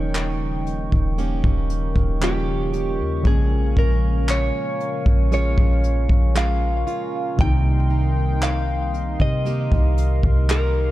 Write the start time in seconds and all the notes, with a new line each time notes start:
Already playing: D#1 C#3 D#3 F3 G3 A#3 C#4 D#4 A#4 C#5 D#5 G5 C#6
0.15 clap, closed hi-hat
0.67 closed hi-hat
0.92 D#1, kick
1.18 A#3 C#4 G4, closed hi-hat
1.44 D#1, kick
1.70 closed hi-hat
1.96 D#1, kick
2.21 C#3 F3 G3 A#3 C#4 F4 G4, clap, closed hi-hat
2.73 G4, closed hi-hat
3.00 D#2
3.22 A#1 A#2 C#3 F3 G#3 F5 G#5, kick, closed hi-hat
3.27 A#3 C#4 G#4
3.77 A#1 C#4 A#4, kick
4.29 C#5, clap
4.80 closed hi-hat
5.06 A#1, kick
5.32 G#3 C#4 F4 C#5, closed hi-hat
5.58 A#1, kick
5.84 closed hi-hat
6.09 A#1, kick
6.35 G#3 C#4 F4 F5, clap
6.87 F4, closed hi-hat
7.36 C2 C3 D#3 G3 D#5 G5 C6, kick, closed hi-hat
7.41 A#3 D#4 G5
7.90 D#4
8.42 F5, clap, closed hi-hat
8.94 closed hi-hat
9.20 C3 D#5, kick
9.45 A#3 D#4 G4 F5, closed hi-hat
9.72 C2, kick
9.98 closed hi-hat
10.23 C2, kick
10.49 A#3 D#4 G4 A#4, clap, closed hi-hat